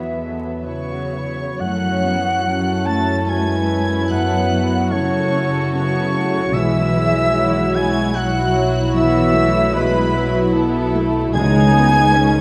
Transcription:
Already playing: double bass section E2, cello section E3, harp E3 F#3 B3 F#4 B4, viola section F#3 B3, violin section B3 G#4 E5, flute E5
0.18 violin section G#3 A4, harp F#5
0.44 violin section B3
0.65 cello section C#3, violin section E4 B4 C#6, harp B4, oboe C#5, flute C#5
0.91 violin section F#4
1.14 violin section E4 C#5, harp F#4
1.40 violin section B3
1.60 harp F#2, double bass section F#2, french horn section F#3 E4, cello section F#3, viola section A3 C#4, flute F#5, oboe F#5, violin section F#6
1.64 violin section F#4 C#5
2.03 harp F#3, viola section B3
2.45 viola section C#4, harp F#4
2.50 violin section A4 C#5
2.86 cello section A3, harp E5, flute A5, oboe A5, violin section A6
3.27 cello section G#3, viola section E4, harp F#4, violin section B4 G#6, flute G#5, oboe G#5
3.69 harp E4
4.09 harp F#2, cello section F#3, viola section B3, violin section A4 F#6, flute F#5, oboe F#5
4.51 harp A3, violin section F#4
4.90 cello section C#3, viola section A3 F#4, violin section A4 C#6, flute C#5, oboe C#5
5.32 viola section C#4, harp E5
5.73 cello section C#3, viola section B3 F#4, harp F#4, oboe C#5, flute C#5, violin section C#6
6.13 viola section A3, harp E4
6.53 double bass section B1, harp B2, cello section E3, french horn section F#3 E4, viola section G#3 E4, violin section G#4 B4 E6, oboe E5, flute E5
6.93 harp B3, violin section C#5
7.33 viola section E4, harp F#4, violin section F#4
7.74 cello section G#3, viola section E4, harp E5, oboe G#5, flute G#5, violin section G#6
8.14 viola section F#3, cello section F#3, harp F#4, violin section F#4 F#6, oboe F#5, flute F#5
8.55 harp E4
8.96 harp B2, cello section E3, viola section B3, flute E5, oboe E5, violin section E6
9.35 viola section A3, harp B3
9.74 cello section B2, viola section G#3, violin section E4 B4 B5, harp F#4, oboe B4, flute B4
10.15 viola section F#3, harp E5
10.54 viola section B3, harp F#4, violin section A4
10.95 viola section A3, harp E4
11.33 double bass section C#2, harp C#3, timpani C#3, french horn section D#3 D#4, cello section G#3, viola section G#3 D#4, violin section G#4 G#6, flute G#5, oboe G#5
11.74 viola section B3
12.14 viola section C#4, violin section G#4, harp C#5

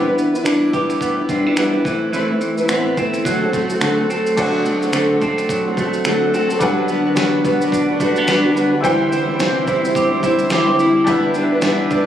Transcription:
Already playing: clean electric guitar E3 B3 E4
0.05 steel-string acoustic guitar D4 E4 B4
0.18 clean electric guitar B3, shaker
0.34 steel-string acoustic guitar D4 E4 B4, shaker
0.44 steel-string acoustic guitar E3 G3 D4 E4 B4, clean electric guitar D4, finger snap, shaker
0.71 steel-string acoustic guitar G3 D4 E4 B4, clean electric guitar G4, kick, shaker
0.90 finger snap, shaker
1.01 clean electric guitar B3, kick, shaker
1.17 steel-string acoustic guitar D4 E4 B4
1.28 steel-string acoustic guitar G3 D4 E4 B4, clean electric guitar C4, kick, shaker
1.46 clean electric guitar D4, steel-string acoustic guitar D4 E4 B4
1.57 steel-string acoustic guitar E3 G3 D4 E4 B4, clean electric guitar B3, finger snap, shaker
1.74 steel-string acoustic guitar D4 E4 B4
1.85 clean electric guitar E3, steel-string acoustic guitar A3 C4 E4 B4, kick, shaker
2.13 steel-string acoustic guitar A2 E3 A3 C4 E4 B4, clean electric guitar E3, shaker
2.29 steel-string acoustic guitar A3 C4 E4 B4
2.41 clean electric guitar E3, shaker
2.58 steel-string acoustic guitar A3 C4 E4 B4, shaker
2.69 steel-string acoustic guitar A2 E3 A3 C4 E4 B4, clean electric guitar B3, finger snap, shaker
2.97 steel-string acoustic guitar A3 C4 E4 B4, clean electric guitar C4, kick, shaker
3.14 finger snap, shaker
3.25 steel-string acoustic guitar D3 A3 C4 F#4 A4, clean electric guitar F#3, kick, shaker
3.41 steel-string acoustic guitar C4 F#4 A4
3.53 steel-string acoustic guitar A3 C4 F#4 A4, clean electric guitar A3, kick, shaker
3.70 steel-string acoustic guitar C4 F#4 A4, shaker
3.80 steel-string acoustic guitar D3 A3 C4 F#4 A4, clean electric guitar F#3, finger snap, shaker
3.98 steel-string acoustic guitar C4 F#4 A4
4.08 steel-string acoustic guitar A3 C4 F#4 A4, clean electric guitar C4, shaker
4.26 shaker
4.36 steel-string acoustic guitar D3 A3 C4 F#4 A4, clean electric guitar F#3, upright piano D4 C5 F#5, kick, crash, shaker
4.65 clean electric guitar F#3, steel-string acoustic guitar A3 C4 F#4 A4, shaker
4.82 steel-string acoustic guitar C4 F#4 A4, shaker
4.91 steel-string acoustic guitar D3 A3 C4 F#4 A4, clean electric guitar A3, finger snap, shaker
5.20 steel-string acoustic guitar A3 C4 F#4 A4, clean electric guitar C4, kick, shaker
5.38 finger snap, shaker
5.49 clean electric guitar F#3, kick, shaker
5.66 steel-string acoustic guitar C4 F#4 A4
5.77 steel-string acoustic guitar A3 C4 F#4 A4, clean electric guitar A3, kick, shaker
5.93 shaker
6.05 steel-string acoustic guitar D3 A3 C4 F#4 A4, clean electric guitar F#3, finger snap, shaker
6.33 steel-string acoustic guitar A3 C4 F#4 A4, clean electric guitar C4, shaker
6.50 steel-string acoustic guitar C4 F#4 A4, shaker
6.59 ambient pad D3 D4 B4 F#5, clean electric guitar F#3, upright piano G3 D4 B4, steel-string acoustic guitar G3 D4 F#4 B4, kick, shaker
6.63 upright piano F#5
6.88 steel-string acoustic guitar G3 D4 F#4 B4, clean electric guitar B3, shaker
7.04 steel-string acoustic guitar D4 F#4 B4
7.15 clean electric guitar F#3, steel-string acoustic guitar G3 D4 F#4 B4, snare, shaker
7.44 steel-string acoustic guitar G3 D4 F#4 B4, clean electric guitar B3, kick, shaker
7.61 steel-string acoustic guitar D4 F#4 B4, shaker
7.72 clean electric guitar D4, kick, shaker
7.89 steel-string acoustic guitar D4 F#4 B4
8.00 steel-string acoustic guitar G3 D4 F#4 B4, clean electric guitar A3, kick, shaker
8.16 clean electric guitar B3, shaker
8.27 steel-string acoustic guitar G3 D4 F#4 B4, clean electric guitar D4, snare, shaker
8.44 steel-string acoustic guitar D4 F#4 B4
8.54 steel-string acoustic guitar G3 D4 F#4 B4, clean electric guitar B3, shaker
8.72 steel-string acoustic guitar D4 F#4 B4
8.81 steel-string acoustic guitar C3 E3 G3 C4 E4, clean electric guitar E3, upright piano E4 G4 C5 G5, ambient pad E4 C5 E5, kick, shaker
8.85 steel-string acoustic guitar C5
9.11 steel-string acoustic guitar G3 C4 E4 C5, clean electric guitar E4, shaker
9.28 steel-string acoustic guitar G3 C4 E4 C5
9.39 steel-string acoustic guitar C3 E3 G3 C4 E4 C5, clean electric guitar C4, snare, shaker
9.67 steel-string acoustic guitar G3 C4 E4 C5, clean electric guitar E4, kick, shaker
9.84 steel-string acoustic guitar G3 C4 E4 C5, shaker
9.95 clean electric guitar G4, kick, shaker
10.11 steel-string acoustic guitar G3 C4 E4 C5
10.23 steel-string acoustic guitar G3 C4 E4 C5, clean electric guitar E4, kick, shaker
10.39 shaker
10.50 steel-string acoustic guitar C3 E3 G3 C4 E4 C5, clean electric guitar G4, snare, shaker
10.69 steel-string acoustic guitar G3 C4 E4 C5
10.79 steel-string acoustic guitar G3 C4 E4 C5, clean electric guitar E4, shaker
11.04 steel-string acoustic guitar E3 G3 D4 E4 B4, ambient pad G3 D4 B4, clean electric guitar B3, upright piano D4 G4 B4, kick, shaker
11.08 upright piano E5
11.34 steel-string acoustic guitar G3 D4 E4 B4, clean electric guitar D4, shaker
11.52 steel-string acoustic guitar D4 E4 B4
11.62 steel-string acoustic guitar E3 G3 D4 E4 B4, clean electric guitar B3, snare, shaker
11.91 steel-string acoustic guitar G3 D4 E4 B4, clean electric guitar D4, kick, shaker

